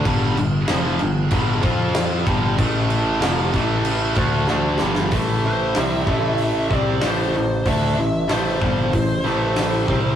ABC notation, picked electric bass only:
X:1
M:4/4
L:1/8
Q:1/4=94
K:Am
V:1 name="Picked electric bass" clef=bass
G,,, G,,, F,,, G,,, G,,, F,,2 G,,, | A,,,2 F,,, A,,,2 D,, D,, G,,, | A,,,2 C,, A,,,2 C,, A,,, A,,, | D,, A,,, A,,, G,,, A,,, A,,,2 C,, |]